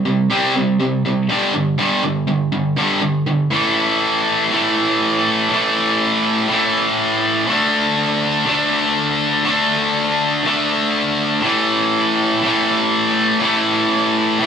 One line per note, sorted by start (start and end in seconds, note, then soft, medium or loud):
0.05 0.27 C3 medium
0.05 0.28 G3 medium
0.30 0.53 C3 medium
0.30 0.54 G3 medium
0.30 0.54 C4 medium
0.56 0.77 C3 medium
0.56 0.78 G3 medium
0.80 1.02 C3 medium
0.80 1.02 G3 medium
1.05 1.27 C3 medium
1.05 1.27 G3 medium
1.29 1.52 G2 loud
1.29 1.53 D3 medium
1.29 1.53 G3 loud
1.54 1.77 G2 medium
1.54 1.77 D3 medium
1.78 2.02 G2 medium
1.78 2.02 D3 medium
1.78 2.03 G3 loud
2.03 2.26 G2 medium
2.03 2.26 D3 medium
2.27 2.50 G2 medium
2.27 2.51 D3 medium
2.52 2.75 G2 medium
2.52 2.75 D3 medium
2.77 3.01 G2 medium
2.77 3.02 D3 medium
2.77 3.02 G3 medium
3.02 3.25 G2 medium
3.02 3.25 D3 medium
3.27 3.50 G2 medium
3.27 3.50 D3 medium
3.51 4.50 A2 medium
3.51 4.52 E3 loud
3.51 4.54 A3 medium
4.51 5.49 A2 medium
4.51 5.50 E3 medium
4.51 5.54 A3 medium
5.50 6.47 A2 loud
5.50 6.49 E3 loud
5.54 6.52 A3 loud
6.48 7.47 A2 medium
6.48 7.48 E3 medium
6.48 7.49 A3 loud
7.47 8.45 D3 medium
7.47 8.47 A3 loud
7.51 8.49 D4 medium
8.45 9.43 D3 medium
8.45 9.46 A3 medium
8.49 9.46 D4 loud
9.44 10.43 D3 medium
9.44 10.45 A3 medium
9.44 10.45 D4 medium
10.44 11.41 D3 medium
10.44 11.43 A3 medium
10.48 11.44 D4 medium
11.42 12.43 A2 medium
11.42 12.45 E3 loud
11.46 12.47 A3 loud
12.43 13.39 A2 medium
12.43 13.42 E3 medium
12.47 13.44 A3 medium
13.40 14.39 A2 medium
13.40 14.40 E3 loud
13.45 14.44 A3 loud
14.40 14.46 A2 medium
14.40 14.46 E3 medium